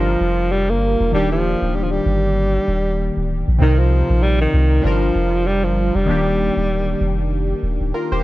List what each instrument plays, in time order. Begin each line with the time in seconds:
Already playing: sub bass G1, alto saxophone F3, synth keys G3 D4 F4 A#4
0.21 sub bass F1
0.52 alto saxophone G3
0.70 sub bass G1, alto saxophone A#3
1.00 sub bass F1
1.11 sub bass D#1, synth keys D#3 A#3 D4, alto saxophone G3
1.16 synth keys G4
1.32 alto saxophone F3
1.62 sub bass D1
1.75 alto saxophone G3
1.84 alto saxophone F3
1.92 alto saxophone G3
2.06 sub bass G1
2.68 sub bass D#1
3.17 sub bass D1
3.48 sub bass A#1
3.58 sub bass C2, synth keys C3 C4 D#4, alto saxophone D#3
3.63 synth keys A#4
3.79 alto saxophone F3
4.10 sub bass A#1
4.23 alto saxophone G3
4.41 alto saxophone D#3
4.54 sub bass C2
4.82 sub bass G1, alto saxophone F3, synth keys G3 D4 F4
4.87 synth keys A#4
5.15 sub bass F1
5.47 alto saxophone G3
5.64 sub bass G1, alto saxophone F3
5.95 sub bass F1, alto saxophone G3
6.06 sub bass D#1, synth keys D#3 A#3 D4
6.11 synth keys G4
6.57 sub bass D1
7.01 sub bass F1
7.63 sub bass D#1
7.81 sub bass D1
7.94 synth keys F4 A#4
8.12 sub bass D#1, synth keys G4 C5